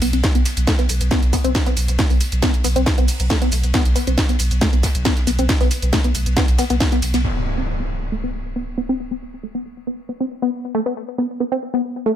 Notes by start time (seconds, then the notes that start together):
0.02 B1 B3, open hi-hat, ride
0.13 B1 C4, closed hi-hat
0.24 kick, snare, closed hi-hat, ride, shaker
0.35 B1 B3, closed hi-hat, shaker
0.45 snare, open hi-hat, ride, shaker
0.57 B1, closed hi-hat, ride, shaker
0.67 A3, kick, snare, closed hi-hat, ride, shaker
0.79 B3, snare, closed hi-hat, shaker
0.89 B1, open hi-hat, ride, shaker
1.01 B1, closed hi-hat, shaker
1.11 B3, kick, snare, closed hi-hat, ride, shaker
1.23 B1, closed hi-hat, shaker
1.33 B3, kick, open hi-hat, ride, shaker
1.44 B1 C4, closed hi-hat, shaker
1.55 kick, snare, closed hi-hat, ride, shaker
1.66 B3, snare, closed hi-hat, shaker
1.76 B1, open hi-hat, ride, shaker
1.88 B1, closed hi-hat, shaker
1.99 A3, kick, snare, closed hi-hat, ride, shaker
2.09 B1 B3, open hi-hat, ride, shaker
2.20 open hi-hat, ride, shaker
2.32 B1, closed hi-hat, shaker
2.42 B3, kick, snare, closed hi-hat, ride, shaker
2.54 closed hi-hat, shaker
2.64 B1 B3, open hi-hat, ride, shaker
2.76 B1 C4, closed hi-hat, shaker
2.86 kick, snare, closed hi-hat, ride, shaker
2.98 B1 B3, closed hi-hat, shaker
3.08 open hi-hat, shaker
3.20 B1, closed hi-hat, shaker
3.30 A3, kick, snare, closed hi-hat, ride, shaker
3.41 B3, snare, closed hi-hat, shaker
3.52 B1, open hi-hat, ride, shaker
3.63 B1, closed hi-hat, shaker
3.74 B3, kick, snare, closed hi-hat, ride, shaker
3.85 B1, closed hi-hat, shaker
3.95 B3, snare, open hi-hat, ride, shaker
4.07 B1 C4, closed hi-hat, ride, shaker
4.18 kick, snare, closed hi-hat, ride, shaker
4.29 B3, snare, closed hi-hat, shaker
4.39 B1, open hi-hat, ride, shaker
4.51 B1, closed hi-hat, shaker
4.61 A3, kick, snare, closed hi-hat, ride, shaker
4.73 B1 B3, closed hi-hat, shaker
4.83 kick, snare, open hi-hat, ride, shaker
4.95 B1, closed hi-hat, shaker
5.05 B3, kick, snare, closed hi-hat, ride, shaker
5.17 snare, closed hi-hat, shaker
5.27 B1 B3, snare, open hi-hat, ride, shaker
5.39 B1 C4, closed hi-hat, ride, shaker
5.49 kick, snare, closed hi-hat, ride, shaker
5.61 B1 B3, snare, open hi-hat, shaker
5.71 open hi-hat, ride, shaker
5.82 B1, closed hi-hat, shaker
5.93 A3, kick, snare, closed hi-hat, ride, shaker
6.04 B3, closed hi-hat, shaker
6.15 B1, open hi-hat, ride, shaker
6.26 B1, closed hi-hat, shaker
6.37 B3, kick, snare, closed hi-hat, ride, shaker
6.48 B1, closed hi-hat, shaker
6.58 B3, snare, open hi-hat, ride, shaker
6.70 B1 B3, snare, closed hi-hat, shaker
6.80 kick, snare, closed hi-hat, ride, shaker
6.92 B3, snare, closed hi-hat, shaker
7.02 B1, open hi-hat, ride, shaker
7.14 B1 B3, snare, closed hi-hat, ride, shaker
7.24 B3, impact
7.46 B3
7.58 C4
7.80 B3
8.12 A3
8.24 B3
8.56 B3
8.78 B3
8.89 C4
9.11 B3
9.43 A3
9.55 B3
9.87 B3
10.09 B3
10.20 C4
10.42 B3
10.75 A3
10.86 B3
11.18 B3
11.40 B3
11.52 C4
11.74 B3
12.06 A3